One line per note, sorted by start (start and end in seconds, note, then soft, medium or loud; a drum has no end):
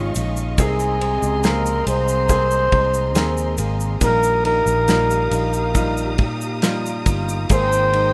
0.00 0.12 G#1 medium
0.00 0.58 C#3 medium
0.00 0.15 G#3 medium
0.00 3.98 G#3 medium
0.00 0.61 C#4 medium
0.00 0.16 D#4 medium
0.00 0.61 D#4 medium
0.00 0.13 F4 medium
0.00 0.15 F4 medium
0.00 0.60 F4 medium
0.00 0.60 G4 medium
0.00 3.97 D#5 medium
0.00 0.55 F5 medium
0.00 0.55 C#6 medium
0.15 0.56 A#1 medium
0.15 1.43 G#3 medium
0.15 1.01 D#4 medium
0.15 0.68 F4 medium
0.15 ride medium
0.15 shaker medium
0.37 shaker soft
0.58 1.19 C2 loud
0.58 4.01 C3 medium
0.58 1.83 C3 medium
0.58 1.40 A#3 medium
0.58 1.40 C4 medium
0.58 1.40 G#4 medium
0.58 1.48 G#4 medium
0.58 3.98 A#5 medium
0.58 3.98 C6 medium
0.58 kick loud
0.58 ride medium
0.58 shaker medium
0.80 shaker soft
1.01 1.86 C4 medium
1.01 ride medium
1.22 1.83 C#2 medium
1.22 shaker soft
1.43 2.25 A#3 medium
1.43 1.86 A#3 medium
1.43 2.25 C4 medium
1.43 2.26 G#4 medium
1.43 1.88 A#4 medium
1.43 snare loud
1.43 ride medium
1.43 shaker medium
1.66 shaker soft
1.87 2.68 C2 loud
1.87 3.58 A#3 medium
1.87 2.28 C4 medium
1.87 3.14 G#4 medium
1.87 3.55 C5 loud
1.87 ride medium
1.87 shaker soft
2.08 shaker soft
2.29 3.11 A#3 medium
2.29 3.58 C4 medium
2.29 3.11 C4 medium
2.29 3.11 G#4 medium
2.29 kick medium
2.29 ride medium
2.29 shaker medium
2.51 shaker soft
2.72 3.15 C2 medium
2.72 kick medium
2.72 ride medium
2.94 shaker soft
3.15 3.55 D#2 medium
3.15 3.97 A#3 medium
3.15 3.98 C4 medium
3.15 3.58 G#4 medium
3.15 3.98 A#4 medium
3.15 snare loud
3.15 ride medium
3.15 shaker medium
3.38 shaker soft
3.58 3.98 G#1 medium
3.58 4.88 A#3 medium
3.58 4.10 C4 medium
3.58 4.11 G#4 medium
3.58 ride medium
3.58 shaker medium
3.80 shaker soft
4.01 4.62 A#1 loud
4.01 7.50 A#2 medium
4.01 5.28 A#2 medium
4.01 4.84 G3 medium
4.01 4.84 D#4 medium
4.01 4.84 F4 medium
4.01 7.47 G4 medium
4.01 4.42 A#4 loud
4.01 7.47 F5 medium
4.01 8.13 A#5 medium
4.01 8.13 D#6 medium
4.01 kick medium
4.01 ride medium
4.01 shaker medium
4.23 shaker soft
4.45 5.32 D#4 medium
4.45 6.16 A#4 loud
4.45 ride medium
4.66 5.27 A#1 medium
4.66 shaker soft
4.88 5.71 G3 medium
4.88 5.31 A#3 medium
4.88 5.71 D#4 medium
4.88 5.71 F4 medium
4.88 snare loud
4.88 ride medium
4.88 shaker medium
5.11 shaker soft
5.31 6.20 A#1 loud
5.31 7.06 A#3 medium
5.31 5.75 D#4 medium
5.31 6.61 F4 medium
5.31 ride medium
5.31 shaker soft
5.53 shaker soft
5.75 6.58 G3 medium
5.75 7.07 D#4 medium
5.75 6.59 D#4 medium
5.75 6.59 F4 medium
5.75 kick medium
5.75 ride medium
5.75 shaker medium
5.97 shaker soft
6.18 7.03 A#2 medium
6.18 kick medium
6.18 ride medium
6.41 shaker soft
6.62 7.46 G3 medium
6.62 7.46 D#4 medium
6.62 7.06 F4 medium
6.62 7.46 F4 medium
6.62 snare loud
6.62 ride medium
6.62 shaker medium
6.86 shaker soft
7.06 7.47 G1 medium
7.06 8.13 A#3 medium
7.06 7.94 D#4 medium
7.06 7.60 F4 medium
7.06 kick medium
7.06 ride medium
7.06 shaker medium
7.29 shaker soft
7.49 8.13 G#1 loud
7.49 8.13 G#2 medium
7.49 8.13 G#3 medium
7.49 8.13 A#3 medium
7.49 8.13 C4 medium
7.49 8.13 G#4 medium
7.49 8.13 A#4 medium
7.49 8.13 C5 medium
7.49 8.13 C5 loud
7.49 8.13 G5 medium
7.49 kick medium
7.49 ride medium
7.49 shaker medium
7.72 shaker soft
7.93 8.13 D#4 medium
7.93 ride medium